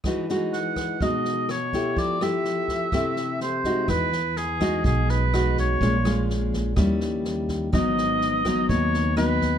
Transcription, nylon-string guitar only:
\new Staff \with { instrumentName = "Nylon-string guitar" } { \time 4/4 \key e \major \tempo 4 = 125 << { <gis dis' fis'>8 <gis dis' fis'>4. <gis dis' fis'>4 r8 <a e' g'>8~ | <a e' g'>8 <a e' g'>4. <a e' g'>4 r8 <gis dis' fis'>8~ | <gis dis' fis'>8 r4 <gis dis' fis'>4. <gis dis' fis'>4 | <gis cis' eis'>8 <gis cis' eis'>4. <g cis' e'>2 |
<fis b dis'>4. <fis b dis'>4. <fis b dis'>4 | } \\ { e2 b,2 | f2 c2 | e2 b,2 | ais,2 dis2 |
gis,2 dis2 | } >> }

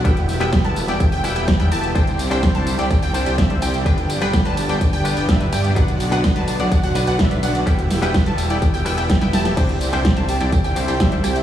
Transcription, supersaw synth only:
\new Staff \with { instrumentName = "Supersaw synth" } { \time 4/4 \key e \minor \tempo 4 = 126 <b e' e'' g''>8. <b e' g' e'' g''>8 <b e' g' e'' a''>8 <b e' g' e'' g''>16 <b e' g' e'' g''>16 <b e' g' e'' g''>16 <b e' g' e'' g''>16 <b e' g' e'' g''>8 <b e' g' e'' g''>16 <b e' g' e'' a''>8 | <e' g' d'' g''>8. <c' e' g' d'' g''>8 <c' e' g' d'' a''>8 <c' e' g' d'' g''>16 <c' e' g' d'' g''>16 <c' e' g' d'' g''>8 <c' e' g' d'' g''>16 <c' e' g' d''>16 r16 <c' e' g' d'' g''>8 | <b d' g' d'' g''>8. <b d' g' d'' g''>8 <b d' g' d'' a''>8 <b d' g' d'' g''>16 <b d' g' d''>16 <b d' g' d'' g''>8 <b d' g' d'' g''>16 <b d' g' e''>16 r16 <b d' g' d'' g''>8 | <b d' fis' d'' fis''>8. <b d' fis' d'' fis''>8 <b d' fis' d'' a''>8 <b d' fis' d'' fis''>16 <b d' fis' d'' fis''>16 <b d' fis' d'' fis''>8 <b d' fis' d'' fis''>16 <b d' fis' e''>16 r16 <b d' fis' d'' fis''>8 |
b8. <b e' g' e'' g''>8 <b e' g' e'' a''>8 <b e' g' e'' g''>16 <b e' g' e'' g''>16 <b e' g' e'' g''>16 <b e' g' e'' g''>16 <b e' g' e'' g''>8 <b e' g' e'' g''>16 <b e' g' e'' a''>8 | <c' e' g' d'' g''>8. <c' e' g' d'' g''>8 <c' e' g' d'' a''>8 <c' e' g' d'' g''>16 <c' e' g' d'' g''>16 <c' e' g' d'' g''>8 <c' e' g' d'' g''>16 <c' e' g' d'' e''>16 r16 <c' e' g' d'' g''>8 | }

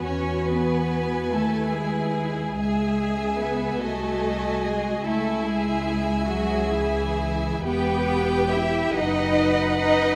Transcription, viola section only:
\new Staff \with { instrumentName = "Viola section" } { \time 6/8 \key cis \minor \tempo 4. = 47 fis'4. e'4. | gis'4. fis'4. | e'4. gis'4. | \key e \minor g'4. b'4. | }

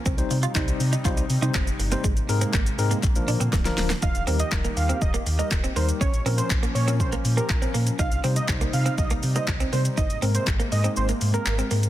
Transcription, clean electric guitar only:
\new Staff \with { instrumentName = "Clean electric guitar" } { \time 4/4 \key ees \major \tempo 4 = 121 c'16 r8 f'16 ees'16 r8 ees'16 f'16 r8 ees'16 c'16 r8 bes16 | aes16 r8 c'16 bes16 r8 bes16 r8 d'16 c'16 bes16 r8 bes16 | ees'16 r16 c'16 r8 bes16 r16 c'16 r16 bes16 r16 bes16 r16 c'16 bes16 r16 | des'16 r16 c'16 r8 bes16 r16 c'16 r16 bes16 r16 bes16 r16 c'16 bes16 r16 |
ees'16 r16 c'16 r8 bes16 r16 c'16 r16 bes16 r16 bes16 r16 c'16 bes16 r16 | ees'16 r16 c'16 r8 bes16 r16 c'16 r16 bes16 r16 bes16 r16 c'16 bes16 r16 | }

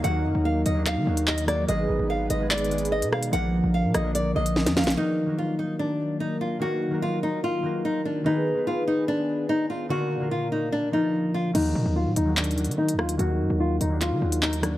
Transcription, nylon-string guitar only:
\new Staff \with { instrumentName = "Nylon-string guitar" } { \time 4/4 \key ees \minor \tempo 4 = 146 ges''4 f''8 ees''8 f''4 ees''8 d''8 | ees''4 f''8 ees''8 d''4 ees''8 f''8 | ges''4 f''8 ees''8 d''8 ees''4 f''8 | ees'4 f'8 ees'8 d'4 ees'8 f'8 |
ges'4 f'8 ees'8 f'4 ees'8 d'8 | ees'4 f'8 ees'8 d'4 ees'8 f'8 | ges'4 f'8 ees'8 d'8 ees'4 f'8 | ees'4 f'8 ees'8 d'4 ees'8 f'8 |
ges'4 f'8 ees'8 f'4 ees'8 d'8 | }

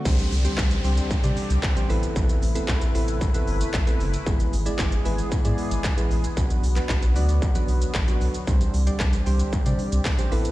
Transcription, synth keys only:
\new Staff \with { instrumentName = "Synth keys" } { \time 4/4 \key c \lydian \tempo 4 = 114 <g c' d' g' c''>8 r16 <g c' d' g' c''>8 r16 <g c' d' g' c''>8 r16 <g c' d' g' d''>8. r16 <g c' d' g' c''>16 <b c' e' a' b'>8~ | <b c' e' a' b'>8 r16 <b c' e' a' b'>8 r16 <b c' e' a' b'>8 r16 <b c' e' a' b'>8. r16 <b c' e' a' b'>8 r16 | <gis b e' gis' b'>8 r16 <gis b e' gis' d''>8 r16 <gis b e' gis' b'>8 r16 <gis b e' gis' d''>8. r16 <gis b e' gis' b'>8 r16 | <fis b d' fis' b'>8 r16 <fis b d' fis' b'>8 r16 <fis b d' fis' d''>8 r16 <fis b d' fis' b'>8. r16 <fis b d' fis' b'>8 r16 |
<g c' d' g' c''>8 r16 <g c' d' g' d''>8 r16 <g c' d' g' c''>8 r16 <g c' d' g' d''>8. r16 <g c' d' g' c''>16 <b c' e' a' b'>8 | }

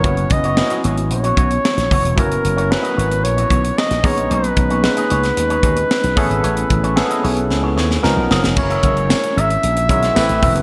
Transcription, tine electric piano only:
\new Staff \with { instrumentName = "Tine electric piano" } { \time 4/4 \key fis \mixolydian \tempo 4 = 113 <fis b cis' e' b'>8 r8 <fis b cis' e' fis'>4. r4. | <fis b cis' e' cis''>8 r8 <fis b cis' e' ais' b'>4. r4 <gis b cis' dis' ais''>8~ | <gis b cis' dis' ais''>8 r8 <gis b cis' dis' b'>4. r4 <b cis' e' gis' a'>8~ | <b cis' e' gis' a'>8 r8 <b cis' e' gis' a'>4. r8 <eis b cis' dis' ais'>4 |
<gis cis' e' fis' gis' ais'>4. r4 <gis cis' e' fis' cis''>8 <a b c' e' g' b'>4 | }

